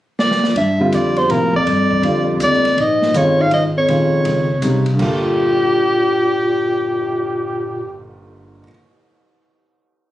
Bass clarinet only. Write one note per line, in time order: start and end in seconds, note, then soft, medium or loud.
0.56 0.96 G2 medium
0.94 1.20 F2 medium
1.18 1.33 E2 medium
1.32 1.55 D2 medium
1.56 2.38 F2 medium
2.42 2.82 F2 medium
2.80 3.18 G#2 medium
3.17 3.42 F2 medium
3.40 3.52 G#2 medium
3.52 3.63 G#2 medium
3.76 4.83 F2 medium
4.99 7.96 A#2 medium